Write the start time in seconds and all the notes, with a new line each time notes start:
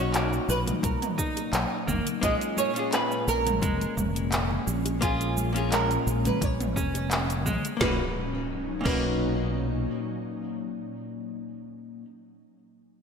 Already playing: B1 A#2 F#3 C#4 D#4 C#5
0.00 D#4 F#4
0.14 A#3, clap, closed hi-hat, cabasa
0.33 cabasa
0.48 B1 B4, high bongo, cabasa
0.66 closed hi-hat, mid tom, low conga, cabasa
0.83 B1 A#4, kick, closed hi-hat, high conga, cabasa
1.02 closed hi-hat, mid tom, cabasa
1.18 D#4, kick, high bongo, cabasa
1.37 closed hi-hat, high bongo, cabasa
1.53 B1, clap, closed hi-hat, cabasa
1.87 F#1 A#3, kick, mid tom, low conga, cabasa
2.07 closed hi-hat, cabasa
2.21 A#1 A#2 G#3 A#3 C#4 F4 G#4 D#5, kick, closed hi-hat, cabasa
2.41 closed hi-hat, cabasa
2.57 C#4 C#5, high conga, cabasa
2.74 A#2 C#4 F4, closed hi-hat, cabasa
2.79 G#4
2.93 B4, clap, closed hi-hat, cabasa
3.12 cabasa
3.28 A#1 A#4, high bongo, cabasa
3.45 closed hi-hat, mid tom, low conga, cabasa
3.62 F1 G#3, kick, closed hi-hat, high conga, cabasa
3.81 closed hi-hat, cabasa
3.97 F1, kick, mid tom, high conga, cabasa
4.16 closed hi-hat, cabasa
4.32 clap, closed hi-hat, cabasa
4.51 low conga
4.67 A#1, high bongo, cabasa
4.85 closed hi-hat, high bongo, cabasa
5.01 A#3 C#4 F4 G#4, kick, closed hi-hat, cabasa
5.21 closed hi-hat, cabasa
5.37 high conga, cabasa
5.53 A#3 C#4 F4, closed hi-hat, cabasa
5.58 G#4
5.72 G#3 A#4, clap, closed hi-hat, cabasa
5.91 closed hi-hat, cabasa
6.07 A#1, high bongo, cabasa
6.25 B4, closed hi-hat, mid tom, low conga, cabasa
6.41 A#1 C#5, kick, closed hi-hat, high conga, cabasa
6.60 closed hi-hat, mid tom, cabasa
6.76 F1 C#4, kick, high bongo, cabasa
6.95 closed hi-hat, high bongo, cabasa
7.11 clap, closed hi-hat, cabasa
7.30 closed hi-hat, cabasa
7.46 A#1 G#3, kick, mid tom, low conga, cabasa
7.65 closed hi-hat, cabasa
7.77 B1 A#3 C#4, impact
7.81 A#2 F#3 C#4 D#4 B4, kick, snare
7.85 F#4
8.81 A#2 C#4
8.85 B1 A#3 D#4 B4, kick, crash
8.89 F#4